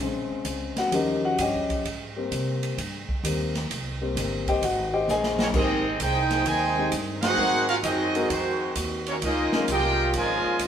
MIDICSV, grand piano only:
0, 0, Header, 1, 2, 480
1, 0, Start_track
1, 0, Key_signature, -4, "major"
1, 0, Tempo, 460829
1, 2, Time_signature, 4, 2, 24, 8
1, 11118, End_track
2, 0, Start_track
2, 0, Title_t, "Grand piano"
2, 0, Program_c, 0, 0
2, 1, Note_on_c, 0, 49, 55
2, 10, Note_on_c, 0, 56, 50
2, 16, Note_on_c, 0, 60, 57
2, 816, Note_on_c, 0, 78, 85
2, 825, Note_on_c, 0, 66, 67
2, 922, Note_off_c, 0, 49, 0
2, 926, Note_off_c, 0, 56, 0
2, 929, Note_off_c, 0, 60, 0
2, 952, Note_on_c, 0, 53, 52
2, 956, Note_on_c, 0, 55, 51
2, 965, Note_off_c, 0, 78, 0
2, 968, Note_on_c, 0, 61, 59
2, 969, Note_off_c, 0, 66, 0
2, 980, Note_on_c, 0, 70, 51
2, 981, Note_on_c, 0, 63, 47
2, 981, Note_on_c, 0, 75, 63
2, 984, Note_on_c, 0, 67, 50
2, 1285, Note_off_c, 0, 70, 0
2, 1286, Note_off_c, 0, 63, 0
2, 1286, Note_off_c, 0, 75, 0
2, 1287, Note_off_c, 0, 67, 0
2, 1302, Note_on_c, 0, 78, 90
2, 1303, Note_on_c, 0, 66, 71
2, 1448, Note_off_c, 0, 78, 0
2, 1449, Note_off_c, 0, 66, 0
2, 1467, Note_on_c, 0, 79, 76
2, 1473, Note_on_c, 0, 67, 62
2, 1473, Note_on_c, 0, 75, 60
2, 1478, Note_on_c, 0, 73, 57
2, 1878, Note_off_c, 0, 53, 0
2, 1880, Note_off_c, 0, 55, 0
2, 1886, Note_off_c, 0, 61, 0
2, 1904, Note_off_c, 0, 79, 0
2, 1907, Note_off_c, 0, 67, 0
2, 1907, Note_off_c, 0, 75, 0
2, 1910, Note_off_c, 0, 73, 0
2, 2255, Note_on_c, 0, 55, 48
2, 2260, Note_on_c, 0, 58, 47
2, 2267, Note_on_c, 0, 60, 57
2, 2858, Note_off_c, 0, 55, 0
2, 2861, Note_off_c, 0, 58, 0
2, 2865, Note_off_c, 0, 60, 0
2, 3379, Note_on_c, 0, 55, 51
2, 3386, Note_on_c, 0, 58, 48
2, 3388, Note_on_c, 0, 60, 50
2, 3663, Note_off_c, 0, 55, 0
2, 3667, Note_off_c, 0, 58, 0
2, 3668, Note_off_c, 0, 60, 0
2, 4182, Note_on_c, 0, 55, 51
2, 4183, Note_on_c, 0, 58, 46
2, 4187, Note_on_c, 0, 60, 57
2, 4672, Note_on_c, 0, 79, 92
2, 4673, Note_on_c, 0, 72, 70
2, 4676, Note_on_c, 0, 67, 70
2, 4677, Note_on_c, 0, 75, 68
2, 4782, Note_off_c, 0, 55, 0
2, 4782, Note_off_c, 0, 58, 0
2, 4784, Note_off_c, 0, 60, 0
2, 4814, Note_off_c, 0, 79, 0
2, 4815, Note_off_c, 0, 72, 0
2, 4816, Note_off_c, 0, 67, 0
2, 4817, Note_off_c, 0, 75, 0
2, 4834, Note_on_c, 0, 66, 65
2, 4835, Note_on_c, 0, 78, 79
2, 5133, Note_off_c, 0, 66, 0
2, 5133, Note_off_c, 0, 78, 0
2, 5141, Note_on_c, 0, 79, 85
2, 5143, Note_on_c, 0, 67, 71
2, 5144, Note_on_c, 0, 75, 67
2, 5145, Note_on_c, 0, 72, 70
2, 5288, Note_off_c, 0, 79, 0
2, 5289, Note_off_c, 0, 67, 0
2, 5290, Note_off_c, 0, 72, 0
2, 5290, Note_off_c, 0, 75, 0
2, 5318, Note_on_c, 0, 75, 76
2, 5318, Note_on_c, 0, 80, 89
2, 5319, Note_on_c, 0, 68, 72
2, 5324, Note_on_c, 0, 72, 72
2, 5676, Note_off_c, 0, 68, 0
2, 5676, Note_off_c, 0, 75, 0
2, 5676, Note_off_c, 0, 80, 0
2, 5679, Note_off_c, 0, 72, 0
2, 5773, Note_on_c, 0, 56, 69
2, 5774, Note_on_c, 0, 60, 59
2, 5778, Note_on_c, 0, 63, 62
2, 5778, Note_on_c, 0, 67, 63
2, 5778, Note_on_c, 0, 70, 75
2, 6059, Note_off_c, 0, 56, 0
2, 6059, Note_off_c, 0, 60, 0
2, 6062, Note_off_c, 0, 63, 0
2, 6062, Note_off_c, 0, 67, 0
2, 6062, Note_off_c, 0, 70, 0
2, 7046, Note_on_c, 0, 56, 69
2, 7053, Note_on_c, 0, 60, 64
2, 7058, Note_on_c, 0, 72, 75
2, 7059, Note_on_c, 0, 63, 60
2, 7060, Note_on_c, 0, 67, 64
2, 7189, Note_off_c, 0, 56, 0
2, 7192, Note_off_c, 0, 60, 0
2, 7195, Note_off_c, 0, 63, 0
2, 7195, Note_off_c, 0, 67, 0
2, 7195, Note_off_c, 0, 72, 0
2, 7685, Note_on_c, 0, 56, 72
2, 7687, Note_on_c, 0, 66, 65
2, 7688, Note_on_c, 0, 63, 60
2, 7690, Note_on_c, 0, 60, 65
2, 7690, Note_on_c, 0, 70, 82
2, 7974, Note_off_c, 0, 56, 0
2, 7975, Note_off_c, 0, 66, 0
2, 7976, Note_off_c, 0, 60, 0
2, 7976, Note_off_c, 0, 63, 0
2, 7976, Note_off_c, 0, 70, 0
2, 8492, Note_on_c, 0, 56, 75
2, 8495, Note_on_c, 0, 70, 88
2, 8496, Note_on_c, 0, 63, 76
2, 8497, Note_on_c, 0, 60, 76
2, 8497, Note_on_c, 0, 66, 73
2, 8630, Note_off_c, 0, 56, 0
2, 8632, Note_off_c, 0, 63, 0
2, 8632, Note_off_c, 0, 70, 0
2, 8633, Note_off_c, 0, 60, 0
2, 8633, Note_off_c, 0, 66, 0
2, 9922, Note_on_c, 0, 56, 74
2, 9924, Note_on_c, 0, 61, 66
2, 9926, Note_on_c, 0, 63, 64
2, 9928, Note_on_c, 0, 65, 62
2, 9932, Note_on_c, 0, 70, 87
2, 10064, Note_off_c, 0, 56, 0
2, 10065, Note_off_c, 0, 61, 0
2, 10066, Note_off_c, 0, 63, 0
2, 10068, Note_off_c, 0, 65, 0
2, 10069, Note_off_c, 0, 70, 0
2, 11118, End_track
0, 0, End_of_file